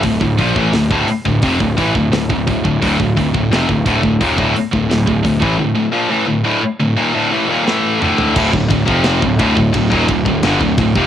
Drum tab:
CC |----------------|----------------|----------------|x---------------|
RD |----------------|----------------|----------------|--x-x-x-x-x-x-x-|
HH |o-o-o-o-o-o-o-o-|o-o-o-o-o-o-o-o-|----------------|----------------|
SD |----o-------o---|----o-------o---|------------o---|----o-------o---|
T2 |----------------|----------------|--------------o-|----------------|
FT |----------------|----------------|---------------o|----------------|
BD |oooo-o-ooooo-ooo|oooo-ooooo-o-ooo|----------------|oooo-ooooooo-ooo|